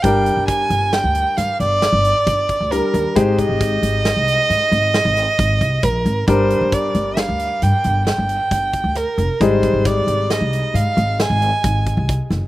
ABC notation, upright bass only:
X:1
M:7/4
L:1/16
Q:1/4=134
K:Gphr
V:1 name="Upright bass" clef=bass
G,,,3 G,,,3 G,,,3 D,,2 z G,, z G,,,3 G,,,2 z G,,,3 D,,2 z E,, z | A,,,3 A,,,3 A,,,3 C,,2 z A,, z A,,,3 A,,,2 z A,,,2 C,,2 B,,,2 A,,,2 | G,,,3 G,,,3 G,,,3 D,,2 z G,, z G,,,3 G,,,2 z G,,,3 D,,2 z F,,, z | A,,,3 A,,,3 A,,,3 C,,2 z A,, z A,,,3 A,,,2 z A,,,3 C,,2 z _G,,, z |]